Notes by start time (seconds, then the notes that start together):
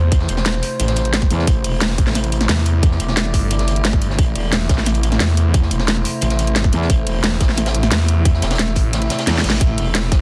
Already playing: E2 C3 A3 E4 C5
0.12 kick, closed hi-hat
0.19 snare
0.28 E1, closed hi-hat
0.37 snare
0.45 snare, closed hi-hat
0.54 snare
0.63 closed hi-hat, open hi-hat
0.80 A1, closed hi-hat
0.87 snare, closed hi-hat
0.96 snare, closed hi-hat
1.05 closed hi-hat
1.13 snare, closed hi-hat
1.22 kick, snare
1.30 E2, closed hi-hat
1.39 snare
1.47 A1 D5, kick, closed hi-hat
1.64 E1, closed hi-hat, open hi-hat
1.81 snare, closed hi-hat
1.90 snare
1.98 A1, kick, closed hi-hat
2.06 snare
2.15 snare, closed hi-hat
2.24 closed hi-hat
2.32 closed hi-hat
2.41 snare, closed hi-hat
2.49 E2, snare, closed hi-hat
2.58 closed hi-hat
2.66 closed hi-hat
2.83 kick, closed hi-hat
2.91 snare
3.00 E1, closed hi-hat
3.08 snare
3.16 snare, closed hi-hat
3.25 snare
3.34 G1, kick, closed hi-hat, open hi-hat
3.51 closed hi-hat
3.59 snare, closed hi-hat
3.67 snare, closed hi-hat
3.76 closed hi-hat
3.84 snare, closed hi-hat
3.93 kick, snare
4.02 closed hi-hat
4.10 snare
4.18 A1 C5, kick, closed hi-hat
4.35 E1, closed hi-hat, open hi-hat
4.53 snare, closed hi-hat
4.61 snare
4.69 A1, kick, snare, closed hi-hat
4.77 snare
4.86 snare, closed hi-hat
4.94 closed hi-hat
5.03 closed hi-hat
5.12 snare, closed hi-hat
5.20 E2, snare, closed hi-hat
5.29 closed hi-hat
5.37 closed hi-hat
5.54 kick, closed hi-hat
5.62 snare
5.71 E1, closed hi-hat
5.79 snare
5.88 snare, closed hi-hat
5.96 snare
6.05 closed hi-hat, open hi-hat
6.21 A1, closed hi-hat
6.30 snare, closed hi-hat
6.38 snare, closed hi-hat
6.47 closed hi-hat
6.56 snare, closed hi-hat
6.64 kick, snare
6.72 E2, closed hi-hat
6.82 snare
6.90 A1 E5, kick, closed hi-hat
7.06 E1, closed hi-hat, open hi-hat
7.24 snare, closed hi-hat
7.32 snare
7.41 A1, kick, snare, closed hi-hat
7.49 snare
7.57 snare, closed hi-hat
7.66 snare, closed hi-hat
7.74 snare, closed hi-hat
7.83 snare, closed hi-hat
7.91 E2, snare, closed hi-hat, open hi-hat
8.08 closed hi-hat
8.25 kick, closed hi-hat
8.33 snare
8.42 E1, snare, closed hi-hat
8.50 snare, closed hi-hat
8.55 snare, closed hi-hat
8.59 snare, closed hi-hat
8.68 snare
8.76 A1, kick, closed hi-hat, open hi-hat
8.93 snare, closed hi-hat, reverse cymbal
9.02 closed hi-hat
9.10 snare, closed hi-hat
9.19 snare, closed hi-hat
9.27 E2, snare, closed hi-hat
9.35 snare, closed hi-hat
9.38 snare
9.43 A1, snare, closed hi-hat
9.50 snare
9.52 snare, closed hi-hat
9.61 A1 C5, kick, closed hi-hat
9.78 E1, closed hi-hat, open hi-hat
9.94 snare, closed hi-hat
10.04 snare
10.11 A1, kick, snare, closed hi-hat